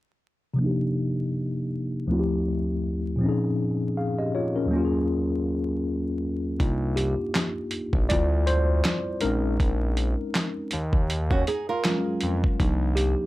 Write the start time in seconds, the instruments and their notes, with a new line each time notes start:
0.54 tine electric piano C3 F3
0.59 tine electric piano A#3 D4
0.64 tine electric piano D#4 G4
2.07 tine electric piano D2 F3 A3 C4
2.12 tine electric piano E4 F#4
2.20 tine electric piano G4
3.16 tine electric piano A#2 F3
3.21 tine electric piano C4 C#4
3.26 tine electric piano D#4 G#4
3.98 tine electric piano G#4 F5
4.19 tine electric piano G4 D#5
4.35 tine electric piano F4 C#5
4.56 tine electric piano C#4 A#4
4.66 tine electric piano D#2 F#3
4.71 tine electric piano A#3 C#4
4.76 tine electric piano F4 G4
4.85 tine electric piano G#4
6.59 analog synth bass C2, tine electric piano A#3 D4 D#4 F4, kick, closed hi-hat
6.96 tine electric piano G4, closed hi-hat
7.35 snare, clap, closed hi-hat
7.71 closed hi-hat
7.93 analog synth bass A#1, kick
8.09 analog synth bass D2, tine electric piano G3 C4 E4 F4 D5, kick, closed hi-hat
8.47 tine electric piano C5, closed hi-hat
8.85 snare, clap, closed hi-hat
9.21 analog synth bass A#1, tine electric piano G#3 C4 C#4 D#4 A#4, closed hi-hat
9.60 analog synth bass A#1, kick, closed hi-hat
9.97 closed hi-hat
10.35 snare, clap, closed hi-hat
10.71 analog synth bass D#2, closed hi-hat
10.93 kick
11.10 closed hi-hat
11.31 nylon-string guitar C#4 F#4, kick
11.47 nylon-string guitar D#4 G#4, closed hi-hat
11.69 nylon-string guitar F4 A#4
11.84 tine electric piano F#3 G#3 C#4 F4, snare, clap, closed hi-hat
12.21 analog synth bass F2, closed hi-hat
12.44 kick
12.59 analog synth bass C2, tine electric piano F3 A#3 D4 D#4, kick, closed hi-hat
12.96 tine electric piano G4, closed hi-hat